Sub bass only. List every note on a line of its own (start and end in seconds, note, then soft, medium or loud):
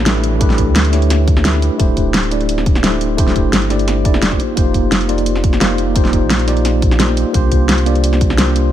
0.00 0.69 A1 loud
0.67 1.70 D2 loud
1.80 3.46 D1 loud
3.45 4.07 G1 loud
4.05 4.38 E1 medium
4.57 6.24 F1 loud
6.22 7.25 A#1 loud
7.34 8.72 C2 loud